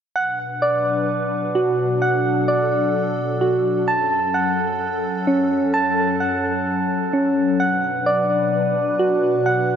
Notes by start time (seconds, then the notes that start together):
0.16 B2 F#3 D4 B4 F#5
0.62 D5
1.55 F#4
2.02 A4 F#5
2.48 D5
3.41 F#4
3.87 F#2 C#4 A4 A5
4.34 F#5
5.27 C#4
5.74 A5
6.20 F#5
7.13 C#4
7.60 B2 D4 B4 F#5
8.06 D5
8.99 F#4
9.46 F#5